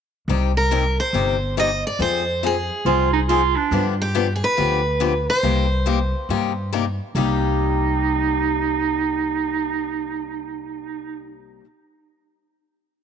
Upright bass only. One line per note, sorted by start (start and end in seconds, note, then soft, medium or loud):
0.28 0.97 C2 medium
1.13 1.82 G1 medium
1.99 2.68 F2 medium
2.85 3.54 C2 medium
3.71 4.40 G2 medium
4.58 5.26 D2 medium
5.43 6.12 C2 medium
6.29 6.98 G2 medium
7.15 11.59 C2 medium